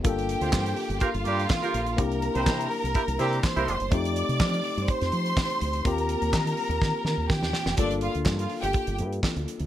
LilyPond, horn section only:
\new Staff \with { instrumentName = "Horn section" } { \time 4/4 \key g \minor \tempo 4 = 124 r8. <c' f' g' c''>8. r8 <bes f' g' bes'>16 r16 <g bes d' g'>8 r16 <bes f' g' bes'>8 r16 | r8. <c' e' g' c''>8. r8 <bes e' g' bes'>16 r16 <g c' e' g'>8 r16 <bes e' g' bes'>8 r16 | r1 | r1 |
r1 | }